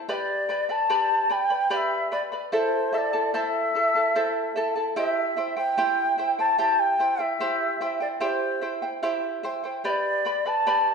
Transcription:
0.08 0.49 G4 medium
0.08 0.48 B4 medium
0.08 0.49 D5 medium
0.08 0.14 E5 medium
0.08 0.47 G5 medium
0.08 0.49 B5 medium
0.13 0.72 D5 medium
0.49 0.69 B4 medium
0.49 0.68 D5 medium
0.49 0.69 G5 medium
0.49 0.68 B5 medium
0.69 0.89 B4 soft
0.69 0.89 D5 soft
0.69 1.34 A5 medium
0.69 0.89 B5 soft
0.89 1.30 G4 medium
0.89 1.29 B4 medium
0.89 1.29 D5 medium
0.89 1.28 G5 medium
0.89 1.30 B5 medium
1.30 1.51 B4 medium
1.30 1.50 D5 medium
1.30 1.50 G5 medium
1.30 1.72 G5 medium
1.30 1.49 B5 medium
1.50 1.69 B4 soft
1.50 1.70 D5 soft
1.50 1.70 B5 soft
1.70 2.11 G4 medium
1.70 2.11 B4 medium
1.70 2.11 D5 medium
1.70 1.77 F5 medium
1.70 2.10 G5 medium
1.70 2.12 B5 medium
1.76 2.10 E5 medium
2.12 2.32 B4 medium
2.12 2.31 D5 medium
2.12 2.22 D5 medium
2.12 2.32 G5 medium
2.12 2.31 B5 medium
2.32 2.53 B4 soft
2.32 2.53 D5 soft
2.32 2.52 B5 soft
2.52 2.92 E4 medium
2.52 2.93 A4 medium
2.52 2.93 C5 medium
2.52 2.58 D5 medium
2.52 2.91 E5 medium
2.52 2.93 A5 medium
2.57 2.95 C5 medium
2.93 3.13 E4 medium
2.93 3.13 A4 medium
2.93 3.13 E5 medium
2.93 2.98 E5 medium
2.93 3.12 A5 medium
2.97 3.36 D5 medium
3.13 3.33 E4 soft
3.13 3.33 A4 soft
3.13 3.33 A5 medium
3.34 3.74 E4 medium
3.34 3.75 A4 medium
3.34 3.74 C5 medium
3.34 3.74 E5 medium
3.34 4.56 E5 medium
3.34 3.75 A5 medium
3.75 3.95 E4 medium
3.75 3.95 A4 medium
3.75 3.95 E5 medium
3.75 3.94 A5 medium
3.95 4.15 E4 soft
3.95 4.15 A4 soft
3.95 4.15 A5 medium
4.15 4.55 E4 medium
4.15 4.55 A4 medium
4.15 4.56 C5 medium
4.15 4.54 E5 medium
4.15 4.56 A5 medium
4.56 4.76 E4 medium
4.56 4.75 A4 medium
4.56 4.75 E5 medium
4.56 4.74 A5 medium
4.75 4.95 E4 soft
4.75 4.96 A4 soft
4.75 4.96 A5 soft
4.96 5.36 E4 medium
4.96 5.37 G4 medium
4.96 5.37 C5 medium
4.96 5.35 E5 medium
4.96 5.54 E5 medium
4.96 5.36 G5 medium
5.37 5.56 E4 medium
5.37 5.56 C5 medium
5.37 5.57 E5 medium
5.37 5.55 G5 medium
5.57 5.77 E4 soft
5.57 5.77 C5 soft
5.57 5.77 G5 medium
5.57 6.35 G5 loud
5.78 6.17 E4 medium
5.78 6.19 G4 medium
5.78 6.18 C5 medium
5.78 6.17 E5 medium
5.78 6.18 G5 medium
6.18 6.38 E4 medium
6.18 6.38 C5 medium
6.18 6.39 E5 soft
6.18 6.37 G5 medium
6.39 6.58 E4 soft
6.39 6.58 C5 soft
6.39 6.58 G5 soft
6.39 6.58 A5 medium
6.58 6.99 E4 medium
6.58 7.00 G4 medium
6.58 6.99 C5 medium
6.58 6.98 E5 medium
6.58 7.00 G5 medium
6.58 6.81 A5 loud
6.79 7.22 G5 medium
6.99 7.19 E4 medium
6.99 7.19 C5 medium
6.99 7.20 E5 soft
6.99 7.18 G5 medium
7.19 7.39 E4 soft
7.19 7.40 C5 soft
7.19 8.01 E5 loud
7.19 7.40 G5 soft
7.40 7.80 E4 medium
7.40 7.81 G4 medium
7.40 7.80 C5 medium
7.40 7.80 E5 medium
7.40 7.81 G5 medium
7.81 8.01 E4 medium
7.81 8.00 C5 medium
7.81 8.02 E5 medium
7.81 7.99 G5 medium
8.00 8.20 E4 soft
8.00 8.20 C5 soft
8.00 8.08 D5 medium
8.00 8.20 G5 medium
8.20 8.61 E4 medium
8.20 8.62 G4 medium
8.20 8.61 C5 medium
8.20 8.28 D5 medium
8.20 8.60 E5 medium
8.20 8.62 G5 medium
8.27 9.00 C5 medium
8.62 8.82 E4 medium
8.62 8.82 C5 medium
8.62 8.83 E5 medium
8.62 8.81 G5 medium
8.82 9.02 E4 soft
8.82 9.02 C5 soft
8.82 9.02 G5 soft
9.03 9.43 E4 medium
9.03 9.44 G4 medium
9.03 9.43 C5 medium
9.03 9.42 E5 medium
9.03 9.44 G5 medium
9.43 9.64 E4 medium
9.43 9.64 C5 medium
9.43 9.64 E5 medium
9.43 9.62 G5 medium
9.64 9.84 E4 soft
9.64 9.84 C5 soft
9.64 9.83 G5 soft
9.84 10.25 G4 medium
9.84 10.24 B4 medium
9.84 10.25 D5 medium
9.84 9.90 E5 medium
9.84 10.24 G5 medium
9.84 10.25 B5 medium
9.89 10.48 D5 medium
10.25 10.46 B4 medium
10.25 10.45 D5 medium
10.25 10.46 G5 medium
10.25 10.44 B5 medium
10.46 10.66 B4 soft
10.46 10.66 D5 soft
10.46 10.94 A5 medium
10.46 10.66 B5 soft
10.66 10.94 G4 medium
10.66 10.94 B4 medium
10.66 10.94 D5 medium
10.66 10.94 G5 medium
10.66 10.94 B5 medium

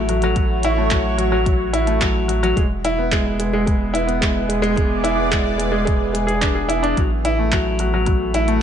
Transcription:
0.00 2.54 A1 medium
0.00 0.09 F#3 loud
0.00 0.78 A3 medium
0.00 2.57 A3 medium
0.00 0.65 E4 loud
0.00 3.56 F#4 medium
0.09 0.17 F#3 medium
0.09 closed hi-hat medium
0.15 2.57 C#5 medium
0.22 0.35 F#3 loud
0.22 closed hi-hat soft
0.36 0.45 F#3 medium
0.36 kick loud
0.36 closed hi-hat soft
0.63 0.72 E4 loud
0.63 closed hi-hat medium
0.78 0.91 A3 medium
0.91 1.05 F#3 medium
0.91 kick loud
0.91 clap medium
0.91 closed hi-hat soft
1.18 1.27 F#3 medium
1.18 closed hi-hat medium
1.32 1.44 F#3 medium
1.46 1.54 F#3 medium
1.46 kick loud
1.46 closed hi-hat soft
1.73 1.82 E4 loud
1.73 closed hi-hat medium
1.87 2.01 A3 medium
1.87 closed hi-hat soft
2.01 2.15 F#3 medium
2.01 kick loud
2.01 clap loud
2.01 closed hi-hat soft
2.28 2.37 F#3 medium
2.28 closed hi-hat medium
2.43 2.56 F#3 loud
2.43 closed hi-hat soft
2.57 6.94 E1 medium
2.57 2.65 G#3 medium
2.57 kick loud
2.57 closed hi-hat soft
2.82 8.61 B3 medium
2.82 2.92 E4 loud
2.82 closed hi-hat medium
2.98 3.11 B3 medium
3.12 3.25 G#3 medium
3.12 kick loud
3.12 clap medium
3.12 closed hi-hat soft
3.39 3.47 G#3 medium
3.39 closed hi-hat medium
3.53 3.65 G#3 medium
3.66 3.74 G#3 medium
3.66 kick loud
3.66 closed hi-hat soft
3.86 8.62 G#4 medium
3.94 4.02 E4 loud
3.94 closed hi-hat medium
4.07 4.21 B3 medium
4.07 closed hi-hat soft
4.21 4.35 G#3 medium
4.21 kick loud
4.21 clap loud
4.21 closed hi-hat soft
4.49 4.57 G#3 medium
4.49 closed hi-hat medium
4.55 6.97 D5 medium
4.62 4.75 G#3 loud
4.62 closed hi-hat soft
4.76 4.85 G#3 medium
4.76 kick loud
4.76 closed hi-hat soft
5.04 5.12 E4 loud
5.04 closed hi-hat medium
5.17 5.31 B3 medium
5.31 5.45 G#3 medium
5.31 kick loud
5.31 clap medium
5.31 closed hi-hat soft
5.58 5.67 G#3 medium
5.58 closed hi-hat medium
5.72 5.84 G#3 medium
5.85 5.94 G#3 medium
5.85 kick loud
5.85 closed hi-hat soft
6.13 6.27 G#3 medium
6.13 closed hi-hat medium
6.27 6.41 G#4 medium
6.27 closed hi-hat soft
6.41 6.55 D4 medium
6.41 kick loud
6.41 clap medium
6.41 closed hi-hat soft
6.55 6.63 G#4 medium
6.69 6.82 E4 loud
6.69 closed hi-hat medium
6.83 6.96 D4 loud
6.83 closed hi-hat soft
6.97 8.62 A1 medium
6.97 7.05 F#3 medium
6.97 kick loud
6.97 closed hi-hat soft
7.25 7.33 E4 loud
7.25 closed hi-hat medium
7.39 7.52 A3 medium
7.52 7.66 F#3 medium
7.52 kick loud
7.52 clap medium
7.52 closed hi-hat soft
7.61 8.62 A3 medium
7.79 7.88 F#3 medium
7.79 closed hi-hat medium
7.94 8.05 F#3 medium
8.06 8.15 F#3 medium
8.06 kick loud
8.06 closed hi-hat soft
8.17 8.62 F#4 medium
8.34 8.43 E4 loud
8.34 closed hi-hat medium
8.48 8.61 A3 medium
8.48 closed hi-hat soft
8.55 8.62 C#5 medium

